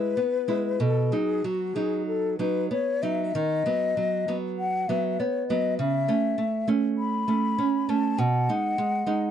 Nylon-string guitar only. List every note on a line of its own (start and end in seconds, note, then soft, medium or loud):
0.00 0.14 G#3 soft
0.00 0.14 E4 soft
0.17 0.68 B3 soft
0.48 0.77 G#3 soft
0.48 0.77 E4 soft
0.80 1.11 B2 medium
1.12 1.41 F#3 soft
1.12 1.41 D#4 soft
1.44 1.74 F#3 soft
1.76 2.35 F#3 soft
1.76 2.35 D#4 soft
2.39 2.68 F#3 soft
2.39 2.68 D#4 soft
2.71 3.22 B3 soft
3.03 3.31 F#3 soft
3.03 3.31 D#4 soft
3.35 3.65 D#3 medium
3.66 3.94 F#3 soft
3.66 3.94 B3 soft
3.97 4.27 F#3 soft
4.28 4.85 F#3 soft
4.28 4.86 B3 soft
4.89 5.16 F#3 soft
4.89 5.17 B3 soft
5.20 5.49 B3 soft
5.50 5.76 F#3 soft
5.50 5.76 B3 soft
5.79 6.08 C#3 medium
6.08 6.35 A3 soft
6.08 6.35 C#4 soft
6.38 6.66 A3 soft
6.68 7.24 A3 soft
6.68 7.24 C#4 soft
7.28 7.55 A3 soft
7.28 7.56 C#4 soft
7.58 7.88 C#4 soft
7.89 8.16 A3 soft
7.89 8.16 C#4 soft
8.18 8.48 B2 medium
8.49 8.75 G#3 soft
8.49 8.76 D#4 medium
8.78 9.05 G#3 medium
9.06 9.31 G#3 soft
9.06 9.31 D#4 medium